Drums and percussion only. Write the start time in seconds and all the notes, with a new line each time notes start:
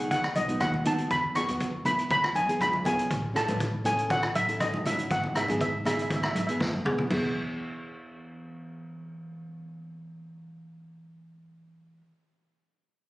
0.11 kick, closed hi-hat
0.24 cross-stick
0.36 closed hi-hat, high conga
0.49 closed hi-hat
0.60 kick, cross-stick, closed hi-hat
0.74 high conga
0.85 closed hi-hat, high conga, low conga
0.98 closed hi-hat
1.11 kick, closed hi-hat
1.35 cross-stick, closed hi-hat
1.48 closed hi-hat, high conga
1.60 kick, closed hi-hat
1.85 closed hi-hat, high conga, low conga
1.99 closed hi-hat
2.10 kick, closed hi-hat
2.24 cross-stick
2.35 closed hi-hat, high conga
2.49 closed hi-hat
2.61 kick, cross-stick, closed hi-hat
2.73 high conga
2.85 closed hi-hat, high conga, low conga
2.99 closed hi-hat
3.11 kick, closed hi-hat
3.36 cross-stick, closed hi-hat
3.48 closed hi-hat, high conga
3.60 kick, closed hi-hat
3.85 closed hi-hat, high conga, low conga
3.98 closed hi-hat
4.10 kick, closed hi-hat
4.23 cross-stick
4.35 closed hi-hat, high conga
4.48 closed hi-hat
4.60 kick, cross-stick, closed hi-hat
4.74 high conga
4.86 closed hi-hat, high conga, low conga
4.99 closed hi-hat
5.11 kick, closed hi-hat
5.24 low conga
5.35 cross-stick, closed hi-hat
5.48 closed hi-hat, high conga
5.61 kick, closed hi-hat
5.85 cross-stick, closed hi-hat, high conga, low conga
5.99 closed hi-hat
6.10 kick, closed hi-hat
6.23 cross-stick
6.35 closed hi-hat, high conga
6.48 closed hi-hat
6.61 kick, snare, high conga
6.73 high conga
6.86 mid tom, low conga
6.98 floor tom, low conga
7.10 kick, crash, high conga